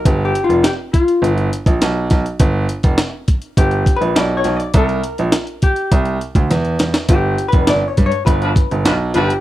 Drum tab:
HH |x-xxx-xxxxxxx-xx|x-xxx-xxxxxxx-xx|xxxxxxxxxxxxxxxx|x-xxx-xxxxxxx-xx|
SD |----o-------o-o-|----o-------o-o-|----o-------o-oo|----o-------o-o-|
BD |o-----o----o--o-|o--o--o-o-o-----|o-----o-o--o----|o--o--o-o-o-----|